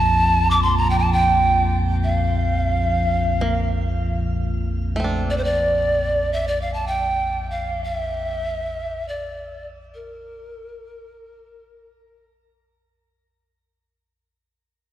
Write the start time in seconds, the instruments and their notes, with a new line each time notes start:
Already playing: synth drone A#1 F2, pan flute A5
0.51 pan flute D6
0.62 pan flute C6
0.78 pan flute A#5
0.90 pan flute G5
0.99 pan flute A5
1.13 pan flute G5
2.04 pan flute F5
3.41 five-string banjo A#3
4.96 five-string banjo A3 C4
5.04 five-string banjo D4
5.30 pan flute D5
5.37 pan flute C5
5.44 pan flute D5
6.33 pan flute E5
6.48 pan flute D5
6.62 pan flute F5
6.74 pan flute A5
6.87 pan flute G5
7.51 pan flute F5
7.84 pan flute F5
7.95 pan flute E5
9.09 pan flute D5
9.95 pan flute A#4